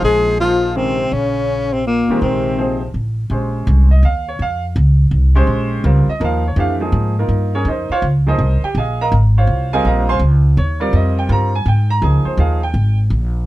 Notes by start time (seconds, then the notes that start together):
Already playing: F3 A#3 D#4 G#4 C5
0.03 A#1 G#3 G#4
0.40 F3 A#3 D#4 F4 G#4 C5
0.75 C3 D#3 G#3 C4 C#4 G4 A#4
1.12 A#1 C#3 C#4
1.72 C3 C4
1.86 A#2 A#3
2.08 D#3 G#3 C4 G4 A#4, muted upright bass stroke
2.22 A#1 C3 C4
2.58 F3 A#3 D#4 G#4 C5
2.94 A1
3.30 A#1 G#3 C#4 G4 C5
3.67 C2
3.91 D#5
4.03 D#2 F5
4.28 C#5
4.39 F2 F5
4.76 C#2
5.11 C2
5.35 G#3 C#4 G4 C5
5.47 A#1
5.84 C#2 G3 C4 F4 A#4
6.07 D#5, muted upright bass stroke
6.20 D#2 F3 A#3 D#4 A#4
6.25 F5
6.47 C#5
6.56 F2 E3 A3 D4 G4 F5
6.80 F3 A#3 D#4 G#4
6.92 G#2
7.19 A#3 D#4 F4 A#4
7.28 G2
7.55 C#4 G#4 A#4 C#5
7.65 F2 D#4 A#4 C5 D#5
7.89 F4 C5 C#5 F5, muted upright bass stroke
8.02 C#2
8.26 F3 A#3 D#4 G#4 A#4 C5 D#5
8.38 C2
8.62 G4 G5, muted upright bass stroke
8.75 A#1 G#4 D#5 G#5
8.79 F5
9.01 A#4 D#5 F5 A#5
9.12 G#1
9.38 F4 C5 C#5 F5
9.47 C2
9.73 G3 C4 F4 G#4 A#4 D#5 F5 G#5
9.85 A#1 A#4 D#5 F5 A#5
10.09 C5 F5 G#5 C6
10.19 C#2
10.57 D#2 C#5
10.80 G3 C4 F4 A#4 D5
10.93 F2 D#5
11.19 G5
11.29 G2 G3 C4 F4 A#4 A#5
11.55 G#5
11.66 G#2 G5
11.90 A#5
12.02 C#2 F3 A#3 D#4 G#4 G#5
12.25 C5, muted upright bass stroke
12.37 D#2 F3 A#3 D#4 G#4 F5
12.63 G5
12.74 G#1
13.10 A#1